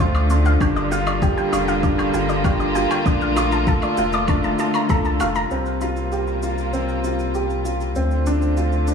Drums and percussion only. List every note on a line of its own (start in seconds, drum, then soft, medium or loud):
0.15 low woodblock medium
0.15 shaker soft
0.30 shaker medium
0.45 shaker soft
0.61 kick medium
0.61 low woodblock medium
0.61 shaker soft
0.76 shaker soft
0.92 shaker medium
1.07 low woodblock medium
1.07 shaker soft
1.22 kick loud
1.22 shaker soft
1.38 shaker soft
1.53 low woodblock medium
1.53 shaker medium
1.68 shaker soft
1.83 kick medium
1.83 shaker soft
1.99 low woodblock medium
1.99 shaker soft
2.14 shaker medium
2.29 shaker soft
2.44 kick medium
2.44 low woodblock medium
2.44 shaker soft
2.60 shaker soft
2.75 shaker medium
2.91 low woodblock medium
2.91 shaker soft
3.06 kick loud
3.06 shaker soft
3.21 shaker soft
3.37 low woodblock medium
3.37 shaker medium
3.52 shaker soft
3.67 kick loud
3.67 shaker soft
3.82 low woodblock medium
3.82 shaker soft
3.97 shaker medium
4.13 shaker soft
4.28 kick loud
4.28 low woodblock medium
4.28 shaker soft
4.44 shaker soft
4.59 shaker medium
4.74 low woodblock medium
4.74 shaker soft
4.89 kick loud
4.89 shaker soft
5.05 shaker soft
5.20 low woodblock medium
5.20 shaker medium
5.35 shaker soft
5.51 shaker soft
5.66 shaker soft
5.81 shaker medium
5.97 shaker soft
6.12 shaker soft
6.27 shaker soft
6.42 shaker medium
6.58 shaker soft
6.73 shaker soft
6.89 shaker soft
7.04 shaker medium
7.19 shaker soft
7.35 shaker soft
7.50 shaker soft
7.65 shaker medium
7.81 shaker soft
7.96 shaker soft
8.11 shaker soft
8.26 shaker medium
8.42 shaker soft
8.57 shaker soft
8.72 shaker soft
8.87 shaker medium